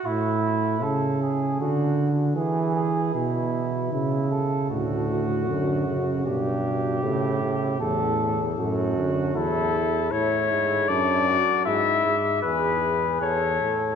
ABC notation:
X:1
M:3/4
L:1/8
Q:1/4=77
K:D
V:1 name="Trumpet"
z6 | z6 | z6 | z6 |
A2 c2 d2 | e2 B2 c2 |]
V:2 name="Flugelhorn"
E2 A ^G F z | ^G G E2 E A | F4 G2- | G2 A2 F2 |
E2 E2 D F | E z ^G2 A2 |]
V:3 name="Trombone" clef=bass
A,,2 C,2 D,2 | E,2 B,,2 C,2 | A,,2 D, C, B,,2 | C, C, A,,2 A,, D, |
z6 | z6 |]
V:4 name="Bass trombone" clef=bass
z6 | z6 | D,,2 F,,2 G,,2 | A,,2 E,,2 F,,2 |
E,,2 A,, ^G,, F,, z | ^G,, G,, E,,2 E,, A,, |]